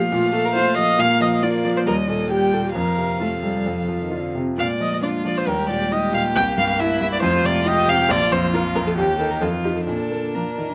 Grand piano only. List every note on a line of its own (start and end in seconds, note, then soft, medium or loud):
0.00 0.12 A#2 medium
0.00 0.77 F3 medium
0.00 0.55 F4 medium
0.12 0.96 A#2 medium
0.33 0.68 A3 medium
0.55 0.90 F4 medium
0.77 0.99 F3 soft
0.99 1.84 A#2 medium
1.21 1.56 F3 soft
1.43 1.78 F4 medium
1.65 1.87 F3 soft
1.86 2.73 D#2 medium
2.08 2.44 A#2 soft
2.30 2.66 G4 soft
2.53 2.75 A#2 soft
2.75 3.63 F2 soft
2.98 3.34 C3 soft
3.20 3.56 F4 soft
3.43 3.79 C3 soft
3.66 4.56 F2 soft
3.88 4.26 F3 soft
4.11 4.49 F4 soft
4.35 4.58 C3 soft
4.58 5.45 A#2 soft
4.80 5.16 F3 soft
5.03 5.38 D4 soft
5.25 5.47 F3 soft
5.47 6.32 D#2 medium
5.69 6.05 A#2 soft
5.92 6.27 D#4 medium
6.13 6.35 A#2 soft
6.36 7.20 C2 medium
6.57 6.92 G2 medium
6.79 7.14 E4 medium
7.01 7.23 G2 medium
7.22 8.07 F2 medium
7.44 7.79 C3 medium
7.65 8.01 F4 medium
7.88 8.10 C3 soft
8.09 8.94 A#1 medium
8.31 8.67 F2 medium
8.54 8.88 F4 medium
8.75 8.97 F2 soft
8.97 9.40 D#2 medium
9.19 9.39 D#4 soft
9.19 9.40 A#4 soft
9.41 9.86 F2 medium
9.64 9.85 D#4 soft
9.64 9.86 F4 soft
9.87 10.74 A#2 soft
10.11 10.49 A#3 soft
10.35 10.72 D4 soft
10.58 10.74 A#3 soft